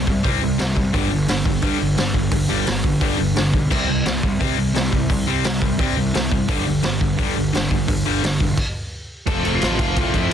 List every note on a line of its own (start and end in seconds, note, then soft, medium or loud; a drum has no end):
0.07 0.21 C2 medium
0.07 0.23 C3 medium
0.07 0.22 G3 medium
0.07 kick medium
0.24 0.39 C2 medium
0.24 0.41 C3 medium
0.24 0.41 G3 loud
0.24 0.41 C4 loud
0.24 kick loud
0.24 open hi-hat medium
0.42 0.57 C2 medium
0.42 0.58 C3 medium
0.42 0.58 G3 medium
0.59 0.74 C2 loud
0.59 0.75 C3 medium
0.59 0.75 G3 medium
0.59 snare loud
0.59 open hi-hat medium
0.76 0.91 C2 medium
0.76 0.92 C3 medium
0.76 0.92 G3 medium
0.76 kick medium
0.93 1.08 G1 medium
0.93 1.09 G2 medium
0.93 1.10 D3 medium
0.93 1.10 G3 medium
0.93 kick loud
0.93 open hi-hat medium
1.10 1.26 G1 medium
1.10 1.26 G2 medium
1.10 1.27 D3 medium
1.28 1.43 G1 medium
1.28 1.43 G2 medium
1.28 1.44 D3 medium
1.28 snare loud
1.28 open hi-hat medium
1.44 1.60 G1 medium
1.44 1.61 G2 medium
1.44 1.61 D3 medium
1.44 kick medium
1.62 1.78 G2 medium
1.62 1.77 G2 medium
1.62 1.78 D3 loud
1.62 1.79 G3 loud
1.62 kick loud
1.62 open hi-hat medium
1.79 1.96 G1 medium
1.79 1.95 G2 medium
1.79 1.95 D3 medium
1.96 2.13 G1 loud
1.96 2.13 G2 medium
1.96 2.13 D3 medium
1.96 snare loud
1.96 open hi-hat medium
2.14 2.29 G1 medium
2.14 2.30 G2 medium
2.14 2.30 D3 medium
2.14 kick medium
2.31 2.46 G1 medium
2.31 2.47 G2 medium
2.31 2.47 D3 medium
2.31 kick loud
2.31 open hi-hat medium
2.48 2.64 G1 medium
2.48 2.65 G2 medium
2.48 2.65 D3 medium
2.48 2.66 G3 loud
2.66 2.82 G1 medium
2.66 2.82 G2 medium
2.66 2.82 D3 medium
2.66 snare loud
2.66 open hi-hat medium
2.83 2.99 G1 medium
2.83 2.99 G2 medium
2.83 3.00 D3 medium
2.83 kick medium
3.00 3.16 G1 medium
3.00 3.16 G2 medium
3.00 3.16 D3 loud
3.00 3.18 G3 loud
3.00 kick loud
3.00 open hi-hat soft
3.18 3.34 G1 medium
3.18 3.33 G2 medium
3.18 3.34 D3 medium
3.35 3.51 G1 medium
3.35 3.51 G2 medium
3.35 3.51 D3 medium
3.35 snare loud
3.35 open hi-hat medium
3.53 3.68 B1 medium
3.53 3.69 G2 medium
3.53 3.69 D3 medium
3.53 kick medium
3.70 3.86 C2 medium
3.70 3.87 C3 medium
3.70 3.87 G3 medium
3.70 3.88 C4 medium
3.70 kick loud
3.70 crash medium
3.88 4.02 C2 medium
3.88 4.04 C3 medium
3.88 4.04 G3 medium
4.05 4.20 C2 medium
4.05 4.21 C3 medium
4.05 4.22 G3 medium
4.05 snare loud
4.05 open hi-hat medium
4.23 4.38 C2 medium
4.23 4.38 C3 medium
4.23 4.39 G3 medium
4.23 kick medium
4.39 4.56 C3 medium
4.39 4.55 C3 medium
4.39 4.56 G3 loud
4.39 4.57 C4 loud
4.39 kick loud
4.39 open hi-hat medium
4.57 4.72 C2 medium
4.57 4.72 C3 medium
4.57 4.73 G3 medium
4.73 4.90 C2 medium
4.73 4.90 C3 medium
4.73 4.90 G3 medium
4.73 snare loud
4.73 open hi-hat medium
4.91 5.07 C2 medium
4.91 5.07 C3 medium
4.91 5.08 G3 medium
4.91 kick medium
5.09 5.24 C2 medium
5.09 5.25 C3 medium
5.09 5.25 G3 medium
5.09 kick loud
5.09 open hi-hat medium
5.27 5.42 C2 medium
5.27 5.44 C3 medium
5.27 5.44 G3 medium
5.27 5.44 C4 loud
5.44 5.60 C2 medium
5.44 5.60 C3 medium
5.44 5.61 G3 medium
5.44 snare loud
5.44 open hi-hat medium
5.61 5.76 C2 loud
5.61 5.77 C3 medium
5.61 5.77 G3 medium
5.61 kick medium
5.78 5.94 C2 medium
5.78 5.95 C3 medium
5.78 5.95 G3 medium
5.78 5.96 C4 loud
5.78 kick loud
5.78 open hi-hat medium
5.96 6.11 C2 medium
5.96 6.12 C3 medium
5.96 6.13 G3 medium
6.13 6.29 C2 loud
6.13 6.30 C3 medium
6.13 6.30 G3 medium
6.13 snare loud
6.13 open hi-hat medium
6.31 6.50 C2 medium
6.31 6.47 C3 medium
6.31 6.48 G3 medium
6.31 kick medium
6.48 6.63 G1 medium
6.48 6.65 G2 medium
6.48 6.65 D3 medium
6.48 6.66 G3 loud
6.48 kick loud
6.48 open hi-hat medium
6.66 6.81 G1 medium
6.66 6.81 G2 medium
6.66 6.82 D3 medium
6.83 6.98 G1 medium
6.83 6.99 G2 medium
6.83 6.99 D3 medium
6.83 snare loud
6.83 open hi-hat medium
7.00 7.16 G1 medium
7.00 7.16 G2 medium
7.00 7.16 D3 medium
7.00 kick medium
7.17 7.34 G2 medium
7.17 7.33 G2 loud
7.17 7.34 D3 medium
7.17 7.35 G3 loud
7.17 kick loud
7.17 open hi-hat soft
7.36 7.51 G1 medium
7.36 7.52 G2 medium
7.36 7.52 D3 medium
7.53 7.68 G1 loud
7.53 7.69 G2 medium
7.53 7.69 D3 medium
7.53 snare loud
7.53 open hi-hat medium
7.70 7.85 G1 medium
7.70 7.86 G2 medium
7.70 7.86 D3 medium
7.70 kick medium
7.88 8.02 G1 medium
7.88 8.04 G2 medium
7.88 8.04 D3 medium
7.88 kick loud
7.88 open hi-hat medium
8.06 8.21 G1 medium
8.06 8.22 G2 medium
8.06 8.23 D3 medium
8.06 8.23 G3 medium
8.23 8.38 G1 medium
8.23 8.39 G2 medium
8.23 8.39 D3 medium
8.23 snare loud
8.23 open hi-hat medium
8.40 8.55 E1 medium
8.40 8.56 G2 medium
8.40 8.56 D3 medium
8.40 kick medium
8.58 kick loud
8.58 crash medium
9.26 9.41 F1 loud
9.26 9.44 F2 loud
9.26 9.44 C3 loud
9.26 9.43 F3 medium
9.26 9.44 A3 loud
9.26 9.44 C4 loud
9.26 9.44 F4 loud
9.26 9.52 A4 medium
9.26 9.52 A5 loud
9.26 kick loud
9.26 crash medium
9.43 9.59 F1 medium
9.43 9.62 F2 medium
9.43 9.62 C3 medium
9.43 9.60 F3 medium
9.43 9.61 A3 medium
9.43 9.62 C4 medium
9.43 9.62 F4 medium
9.43 crash medium
9.55 9.78 F4 medium
9.55 9.80 F5 medium
9.61 9.76 A1 loud
9.61 9.79 F2 medium
9.61 9.79 C3 medium
9.61 9.79 F3 medium
9.61 9.80 A3 medium
9.61 9.80 C4 medium
9.61 9.81 F4 medium
9.61 snare loud
9.61 crash medium
9.79 9.93 F1 loud
9.79 9.96 F2 medium
9.79 9.96 C3 medium
9.79 9.95 F3 medium
9.79 9.96 A3 medium
9.79 9.97 C4 loud
9.79 9.97 F4 loud
9.79 9.97 F4 medium
9.79 9.97 F5 loud
9.79 kick loud
9.79 crash medium
9.96 10.11 C2 medium
9.96 10.13 F2 loud
9.96 10.14 C3 loud
9.96 10.13 F3 loud
9.96 10.13 A3 loud
9.96 10.15 C4 loud
9.96 10.14 F4 loud
9.96 10.14 F4 medium
9.96 10.16 F5 loud
9.96 kick loud
9.96 crash medium
10.13 10.28 F2 medium
10.13 10.31 F2 medium
10.13 10.31 C3 medium
10.13 10.30 F3 medium
10.13 10.31 A3 medium
10.13 10.32 C4 medium
10.13 10.31 E4 medium
10.13 10.31 F4 medium
10.13 10.33 E5 medium
10.13 kick medium
10.13 crash medium